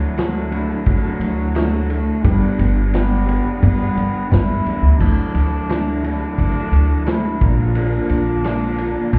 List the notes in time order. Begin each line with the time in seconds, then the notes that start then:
Already playing: D2 D3 F#3 A3 D4 E4 F#4 A4
0.17 D3 F#3 A3 E4 F#4 A4, snare, ride
0.51 D3 F#3 A3 D4 E4 F#4 A4, ride
0.68 E4 F#4 A4
0.86 D3 F#3, kick, ride
1.03 E4 F#4 A4
1.19 D2 A3 E4 F#4 A4, ride
1.55 D3 A3 E4 F#4 A4, snare, ride
1.72 E4 F#4 A4
1.90 A3 E4 F#4 A4, ride
2.23 G1 G2 D3 G3 B3 D4 G4 B4, kick, ride
2.58 G1 G3 D4 G4 B4, ride
2.93 G3 B3 D4 G4 B4, snare, ride
3.26 G2 D3 G3 B3 D4 G4 B4, ride
3.45 D4 G4 B4
3.62 G2 B3, kick, ride
3.80 D4 G4 B4
3.96 G1 G3 D4 G4 B4, ride
4.31 G2 G3 D4 E4 G4 B4, kick, snare, ride
4.47 F#2 D4 G4 B4
4.65 E2 G3 D4 G4 B4, ride
4.82 D2
4.99 D2 D3 F#3 A3 D4 E4 F#4 A4, kick, crash
5.34 D2 A3 E4 F#4 A4, ride
5.69 D3 A3 E4 F#4 A4, snare, ride
6.03 D3 F#3 A3 D4 E4 F#4 A4, ride
6.20 E4 F#4 A4
6.38 D3, kick, ride
6.55 E4 F#4 A4
6.72 D2 A3 E4 F#4 A4, ride
7.06 D3 A3 E4 F#4 A4, snare, ride
7.24 E4 F#4 A4
7.41 A#1 A#2 D3 A#3 D4 F4 A#4, kick, ride
7.75 A#2 F3 A#3 D4 F4 A#4, ride
8.09 A#1 A#3 D4 F4 A#4, ride
8.43 A#2 D3 F3 A#3 D4 F4 A#4, snare, ride
8.78 A#3 D4 F4 A#4, ride
8.95 A#3 D4 F4 A#4
9.13 A#2 D4, kick, ride